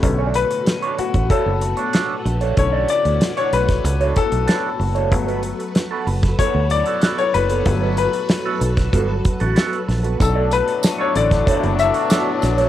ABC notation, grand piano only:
X:1
M:4/4
L:1/16
Q:1/4=94
K:Bm
V:1 name="Grand piano"
z2 B4 F2 A4 z4 | c2 d3 c B4 A6- | A4 z4 c2 d3 c B2- | B2 B8- B2 z4 |
A2 B3 c d4 e6 |]
V:2 name="Grand piano"
[D,A,C]16 | [D,A,C]2 z12 z2 | [F,A,B,]16 | [F,A,B,]6 z8 z2 |
z6 [D,A,c]2 z8 |]